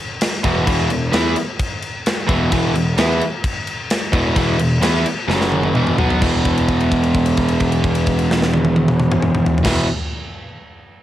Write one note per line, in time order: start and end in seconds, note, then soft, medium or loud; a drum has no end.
0.21 snare loud
0.21 crash medium
0.44 0.66 E1 loud
0.44 0.65 E2 loud
0.44 0.66 B2 loud
0.44 0.67 E3 loud
0.44 kick loud
0.44 crash medium
0.66 0.88 E1 medium
0.66 0.89 E2 medium
0.66 0.89 B2 medium
0.66 0.90 E3 loud
0.66 kick loud
0.66 crash medium
0.90 1.12 E1 medium
0.90 1.09 E2 medium
0.90 1.09 B2 medium
0.90 crash medium
1.12 1.35 E2 loud
1.12 1.35 E3 medium
1.12 1.35 B3 medium
1.12 1.35 E4 loud
1.12 snare loud
1.12 crash medium
1.36 crash medium
1.59 kick loud
1.59 crash medium
1.82 crash medium
2.06 snare loud
2.06 crash medium
2.27 2.50 E1 loud
2.27 2.50 E2 medium
2.27 2.51 B2 loud
2.27 2.51 E3 loud
2.27 kick loud
2.27 crash medium
2.51 2.73 E1 medium
2.51 2.73 E2 medium
2.51 2.74 B2 loud
2.51 2.74 E3 loud
2.51 kick loud
2.51 crash medium
2.75 2.97 E1 medium
2.75 2.93 E2 medium
2.75 2.93 B2 medium
2.75 crash medium
2.98 3.20 E2 medium
2.98 3.20 E3 medium
2.98 3.21 B3 loud
2.98 3.21 E4 loud
2.98 snare loud
2.98 crash medium
3.21 crash soft
3.44 kick loud
3.44 crash medium
3.67 crash medium
3.90 snare loud
3.90 crash medium
4.12 4.34 E1 loud
4.12 4.35 E2 medium
4.12 4.36 B2 loud
4.12 4.36 E3 loud
4.12 kick loud
4.12 crash medium
4.36 4.58 E1 medium
4.36 4.57 E2 medium
4.36 4.57 B2 loud
4.36 4.59 E3 loud
4.36 kick loud
4.36 crash medium
4.58 4.80 E1 medium
4.58 4.77 E2 medium
4.58 4.77 B2 medium
4.58 crash medium
4.81 5.03 E2 loud
4.81 5.04 E3 loud
4.81 5.05 B3 loud
4.81 5.05 E4 loud
4.81 snare loud
4.81 crash medium
5.06 crash medium
5.28 5.71 F#1 medium
5.28 5.74 F#2 medium
5.28 5.74 C#3 medium
5.28 5.74 F#3 loud
5.28 snare medium
5.41 snare medium
5.52 high tom medium
5.63 high tom medium
5.75 5.96 E1 medium
5.75 5.97 E2 medium
5.75 5.96 B2 loud
5.75 5.98 E3 loud
5.75 mid tom medium
5.87 mid tom medium
5.97 6.19 B1 loud
5.97 6.20 B2 medium
5.97 6.21 F#3 loud
5.97 6.21 B3 loud
5.97 floor tom loud
6.10 floor tom loud
6.19 9.55 E1 medium
6.19 9.63 E2 loud
6.19 9.65 B2 medium
6.19 9.67 E3 medium
6.19 kick loud
6.19 crash medium
6.45 kick medium
6.45 crash soft
6.58 crash soft
6.68 kick medium
6.68 crash soft
6.80 crash soft
6.92 kick medium
6.92 crash soft
7.03 crash soft
7.15 kick medium
7.15 crash soft
7.26 crash medium
7.37 kick medium
7.37 crash medium
7.48 crash medium
7.60 kick medium
7.60 crash soft
7.72 crash soft
7.84 kick medium
7.84 crash soft
7.95 crash medium
8.07 kick medium
8.07 crash medium
8.19 crash medium
8.31 snare loud
8.42 snare medium
8.54 high tom medium
8.65 high tom medium
8.76 high tom medium
8.88 mid tom loud
9.00 mid tom loud
9.12 mid tom loud
9.22 mid tom loud
9.35 mid tom loud
9.46 floor tom loud
9.58 floor tom loud
9.63 9.84 E1 medium
9.63 9.85 E2 medium
9.63 9.86 B2 medium
9.63 kick loud
9.63 snare loud
9.63 crash loud
9.67 9.87 E3 loud